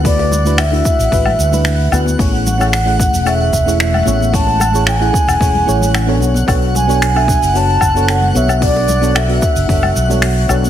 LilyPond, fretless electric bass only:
\new Staff \with { instrumentName = "Fretless electric bass" } { \clef bass \time 4/4 \key b \dorian \tempo 4 = 112 d,4. r16 a,,16 a,,8 d,4 d,8 | a,,4.~ a,,16 e,,8. e,,4 a,,8~ | a,,4. r16 e,,16 e,,8 a,,4 b,,8 | b,,4.~ b,,16 fis,,8. fis,,4 b,,8~ |
b,,4. r16 fis,,16 fis,,8 b,,4 b,,8 | }